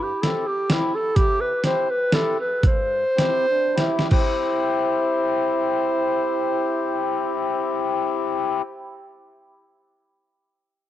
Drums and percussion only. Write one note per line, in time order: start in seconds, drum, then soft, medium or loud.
0.23 snare medium
0.23 closed hi-hat soft
0.70 snare medium
0.70 closed hi-hat medium
1.16 kick medium
1.16 closed hi-hat soft
1.64 snare soft
1.64 closed hi-hat soft
2.12 snare medium
2.12 closed hi-hat soft
2.63 kick medium
2.63 closed hi-hat soft
3.18 snare medium
3.18 closed hi-hat soft
3.78 snare soft
3.78 closed hi-hat soft
3.99 snare soft
4.11 kick medium
4.11 crash medium